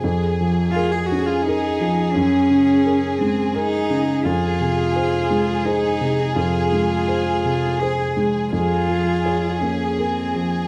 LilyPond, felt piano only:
\new Staff \with { instrumentName = "Felt piano" } { \time 3/4 \key f \phrygian \tempo 4 = 84 f,8 f8 <aes' bes'>8 des'8 <aes' bes'>8 f8 | ges,8 des8 <aes' bes'>8 aes8 <aes' bes'>8 des8 | f,8 c8 <aes' c''>8 aes8 <aes' c''>8 c8 | f,8 aes8 <aes' c''>8 c8 <aes' c''>8 aes8 |
f,8 f8 <aes' des''>8 bes8 <aes' bes'>8 f8 | }